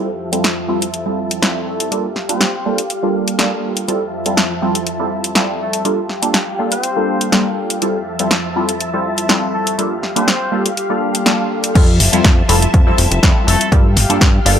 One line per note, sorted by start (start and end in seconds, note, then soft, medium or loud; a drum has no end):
0.00 1.90 F3 medium
0.00 0.10 A4 medium
0.00 1.90 E5 medium
0.00 1.90 A5 medium
0.32 0.46 G3 medium
0.32 0.46 C4 medium
0.32 0.46 E4 medium
0.32 0.46 F4 medium
0.32 0.46 A4 medium
0.32 closed hi-hat medium
0.44 snare loud
0.44 closed hi-hat soft
0.68 0.83 G3 medium
0.68 0.83 C4 medium
0.68 0.83 E4 medium
0.68 0.84 F4 medium
0.68 0.84 A4 medium
0.82 closed hi-hat medium
0.94 closed hi-hat soft
1.06 1.39 G3 medium
1.06 1.39 C4 medium
1.06 1.40 E4 medium
1.06 1.40 F4 medium
1.06 1.40 A4 medium
1.31 closed hi-hat medium
1.42 1.89 G3 medium
1.42 1.89 C4 medium
1.42 1.89 E4 medium
1.42 1.89 F4 medium
1.42 1.89 A4 loud
1.42 snare loud
1.42 closed hi-hat soft
1.67 1.88 A3 medium
1.67 1.88 A4 medium
1.80 closed hi-hat medium
1.91 2.06 G3 medium
1.91 2.06 A#3 medium
1.91 2.06 D4 medium
1.91 2.06 F4 medium
1.91 3.87 G4 medium
1.91 2.07 A4 medium
1.91 3.86 F5 medium
1.91 closed hi-hat soft
2.16 snare soft
2.29 2.43 G3 medium
2.29 2.43 A#3 medium
2.29 2.78 C4 medium
2.29 2.43 D4 medium
2.29 2.43 F4 medium
2.29 2.43 A4 medium
2.29 2.78 C5 medium
2.29 closed hi-hat medium
2.41 snare loud
2.41 closed hi-hat soft
2.65 2.80 G3 medium
2.65 2.80 A#3 medium
2.65 2.80 D4 medium
2.65 2.80 F4 medium
2.65 2.81 A4 medium
2.78 closed hi-hat medium
2.90 closed hi-hat soft
3.02 3.36 G3 medium
3.02 3.36 A#3 medium
3.02 3.36 D4 medium
3.02 3.36 F4 medium
3.02 3.37 A4 medium
3.28 closed hi-hat medium
3.38 3.85 G3 medium
3.38 3.85 A#3 medium
3.38 3.85 D4 medium
3.38 3.86 F4 medium
3.38 3.86 A4 loud
3.38 snare loud
3.38 closed hi-hat soft
3.77 closed hi-hat medium
3.88 5.83 F3 medium
3.88 4.03 G3 medium
3.88 4.03 C4 medium
3.88 4.03 E4 medium
3.88 4.03 F4 medium
3.88 4.03 A4 medium
3.88 5.83 E5 medium
3.88 5.83 A5 medium
3.88 closed hi-hat soft
4.26 4.39 G3 medium
4.26 4.39 C4 medium
4.26 4.40 E4 medium
4.26 4.40 F4 medium
4.26 4.40 A4 medium
4.26 closed hi-hat medium
4.37 snare loud
4.37 closed hi-hat soft
4.62 4.77 G3 medium
4.62 4.77 C4 medium
4.62 4.77 E4 medium
4.62 4.77 F4 medium
4.62 4.77 A4 medium
4.75 closed hi-hat medium
4.87 closed hi-hat soft
4.99 5.33 G3 medium
4.99 5.33 C4 medium
4.99 5.33 E4 medium
4.99 5.33 F4 medium
4.99 5.34 A4 medium
5.24 closed hi-hat medium
5.35 5.82 G3 medium
5.35 5.82 C4 medium
5.35 5.82 E4 medium
5.35 5.82 F4 medium
5.35 5.83 A4 loud
5.35 snare loud
5.35 closed hi-hat soft
5.61 5.82 A3 medium
5.61 5.82 A4 medium
5.73 closed hi-hat medium
5.85 6.00 G3 medium
5.85 6.00 A#3 medium
5.85 6.00 D4 medium
5.85 6.00 F4 medium
5.85 7.80 G4 medium
5.85 6.00 A4 medium
5.85 7.80 F5 medium
5.85 closed hi-hat soft
6.09 snare soft
6.22 6.36 G3 medium
6.22 6.36 A#3 medium
6.22 6.36 D4 medium
6.22 6.36 F4 medium
6.22 6.36 A4 medium
6.22 closed hi-hat medium
6.34 snare loud
6.34 closed hi-hat soft
6.59 6.74 G3 medium
6.59 6.74 A#3 medium
6.59 6.74 D4 medium
6.59 6.74 F4 medium
6.59 6.74 A4 medium
6.71 7.40 C4 medium
6.71 7.40 C5 medium
6.71 closed hi-hat medium
6.83 closed hi-hat soft
6.96 7.30 G3 medium
6.96 7.30 A#3 medium
6.96 7.30 D4 medium
6.96 7.30 F4 medium
6.96 7.30 A4 medium
7.21 closed hi-hat medium
7.32 7.79 G3 medium
7.32 7.79 A#3 medium
7.32 7.79 D4 medium
7.32 7.79 F4 medium
7.32 7.79 A4 loud
7.32 snare loud
7.32 closed hi-hat soft
7.70 closed hi-hat medium
7.82 9.77 F3 medium
7.82 7.97 G3 medium
7.82 7.97 C4 medium
7.82 7.97 E4 medium
7.82 7.97 F4 medium
7.82 7.97 A4 medium
7.82 9.77 E5 medium
7.82 9.77 A5 medium
7.82 closed hi-hat soft
8.19 8.33 G3 medium
8.19 8.33 C4 medium
8.19 8.33 E4 medium
8.19 8.33 F4 medium
8.19 8.33 A4 medium
8.19 closed hi-hat medium
8.31 snare loud
8.31 closed hi-hat soft
8.56 8.70 G3 medium
8.56 8.71 C4 medium
8.56 8.71 E4 medium
8.56 8.71 F4 medium
8.56 8.71 A4 medium
8.69 closed hi-hat medium
8.80 closed hi-hat soft
8.93 9.27 G3 medium
8.93 9.27 C4 medium
8.93 9.27 E4 medium
8.93 9.27 F4 medium
8.93 9.27 A4 medium
9.18 closed hi-hat medium
9.29 9.76 G3 medium
9.29 9.76 C4 medium
9.29 9.76 E4 medium
9.29 9.76 F4 medium
9.29 9.76 A4 loud
9.29 snare loud
9.29 closed hi-hat medium
9.53 9.75 A3 medium
9.53 9.75 A4 medium
9.67 closed hi-hat medium
9.78 9.93 G3 medium
9.78 9.93 A#3 medium
9.78 9.93 D4 medium
9.78 9.93 F4 medium
9.78 11.73 G4 medium
9.78 9.94 A4 medium
9.78 11.73 F5 medium
9.78 closed hi-hat soft
10.03 snare soft
10.16 10.30 G3 medium
10.16 10.30 A#3 medium
10.16 10.65 C4 medium
10.16 10.30 D4 medium
10.16 10.30 F4 medium
10.16 10.30 A4 medium
10.16 10.65 C5 medium
10.16 closed hi-hat medium
10.28 snare loud
10.28 closed hi-hat medium
10.52 10.67 G3 medium
10.52 10.67 A#3 medium
10.52 10.67 D4 medium
10.52 10.67 F4 medium
10.52 10.67 A4 medium
10.66 closed hi-hat medium
10.77 closed hi-hat soft
10.89 11.23 G3 medium
10.89 11.23 A#3 medium
10.89 11.23 D4 medium
10.89 11.23 F4 medium
10.89 11.23 A4 medium
11.15 closed hi-hat medium
11.25 11.72 G3 medium
11.25 11.72 A#3 medium
11.25 11.72 D4 medium
11.25 11.73 F4 medium
11.25 11.73 A4 loud
11.25 snare loud
11.25 closed hi-hat medium
11.64 closed hi-hat medium
11.75 12.01 F2 loud
11.75 13.70 F3 medium
11.75 11.90 G3 medium
11.75 11.90 C4 medium
11.75 11.90 E4 medium
11.75 11.90 F4 medium
11.75 11.90 A4 medium
11.75 13.70 E5 medium
11.75 13.70 A5 loud
11.75 kick loud
11.75 closed hi-hat medium
11.75 crash loud
12.00 12.09 F1 loud
12.00 open hi-hat loud
12.12 12.22 F2 soft
12.12 12.26 G3 medium
12.12 12.26 C4 medium
12.12 12.27 E4 medium
12.12 12.27 F4 medium
12.12 12.27 A4 medium
12.12 closed hi-hat medium
12.24 12.43 F2 loud
12.24 kick loud
12.24 snare loud
12.24 closed hi-hat medium
12.49 12.67 F1 medium
12.49 12.64 G3 medium
12.49 12.64 C4 medium
12.49 12.64 E4 medium
12.49 12.64 F4 medium
12.49 12.64 A4 loud
12.49 open hi-hat loud
12.62 closed hi-hat medium
12.74 12.92 F2 medium
12.74 kick loud
12.74 closed hi-hat medium
12.86 13.20 G3 medium
12.86 13.20 C4 medium
12.86 13.20 E4 medium
12.86 13.20 F4 medium
12.86 13.20 A4 medium
12.98 13.08 F1 medium
12.98 open hi-hat loud
13.11 13.20 F1 medium
13.11 closed hi-hat medium
13.23 13.32 F2 medium
13.23 13.69 G3 loud
13.23 13.69 C4 medium
13.23 13.69 E4 medium
13.23 13.69 F4 medium
13.23 13.69 A4 loud
13.23 kick loud
13.23 snare loud
13.23 closed hi-hat medium
13.47 13.57 F1 loud
13.47 13.69 A3 medium
13.47 13.69 A4 medium
13.47 open hi-hat loud
13.61 closed hi-hat medium
13.72 13.98 G2 loud
13.72 13.87 G3 medium
13.72 13.87 A#3 medium
13.72 13.87 D4 medium
13.72 13.87 F4 medium
13.72 14.59 G4 medium
13.72 13.87 A4 loud
13.72 14.59 F5 medium
13.72 kick loud
13.72 closed hi-hat medium
13.96 14.06 G1 loud
13.96 snare soft
13.96 open hi-hat loud
14.09 14.19 G2 soft
14.09 14.23 G3 medium
14.09 14.23 A#3 medium
14.09 14.23 D4 medium
14.09 14.23 F4 medium
14.09 14.23 A4 medium
14.09 closed hi-hat medium
14.21 14.39 G2 loud
14.21 kick loud
14.21 snare loud
14.21 closed hi-hat medium
14.46 14.59 G1 loud
14.46 14.59 G3 medium
14.46 14.59 A#3 medium
14.46 14.59 D4 medium
14.46 14.59 F4 medium
14.46 14.59 A4 medium
14.46 open hi-hat loud